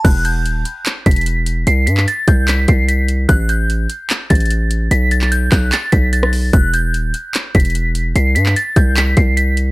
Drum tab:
CC |x-------------------------------|--------------------------------|--------------------------------|--------------------------------|
HH |x---x---x---x---x---xxxxx---x---|x---x---x---x---x---x---x---x---|x---x---x---x---x---xxxxx---x---|x---x---x---x---x---x---x---o---|
CP |----------------x---------------|------x---------x---------------|----------------x---------------|------x-----x---x---------------|
SD |--------------------------------|--------------------------------|--------------------------------|--------------------------r-----|
BD |o-------------------o-----------|------------o-------o-----------|o-------------------o-----------|------------o-------o-----------|

CC |--------------------------------|--------------------------------|
HH |x---x---x---x---x---xxxxx---x---|x---x---x---x---x---x---x---x---|
CP |----------------x---------------|------x---------x---------------|
SD |--------------------------------|--------------------------------|
BD |o-------------------o-----------|------------o-------o-----------|